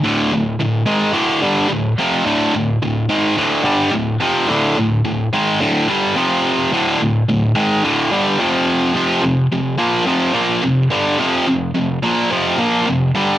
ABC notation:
X:1
M:4/4
L:1/8
Q:1/4=107
K:Dm
V:1 name="Distorted electric guitar" clef=bass
[D,,A,,D,] [D,,A,,] [D,,A,,] [^G,,_E,^G,] [D,,A,,D,] [=G,,D,=G,] [D,,A,,] [F,,C,F,] | [D,,A,,D,] [D,,A,,] [D,,A,,] [^G,,_E,^G,] [D,,A,,D,] [=G,,D,=G,] [D,,A,,] [F,,C,F,] | [D,,A,,D,] [D,,A,,] [D,,A,,] [^G,,_E,^G,] [D,,A,,D,] [=G,,D,=G,] [F,,C,F,]2 | [D,,A,,D,] [D,,A,,] [D,,A,,] [^G,,_E,^G,] [D,,A,,D,] [=G,,D,=G,] [F,,C,F,]2 |
[F,,C,F,] [F,,C,] [F,,C,] [B,,F,B,] [F,,C,F,] [B,,F,B,] [F,,C,] [G,,D,G,] | [F,,C,F,] [F,,C,] [F,,C,] [B,,F,B,] [F,,C,F,] [B,,F,B,] [F,,C,] [G,,D,G,] |]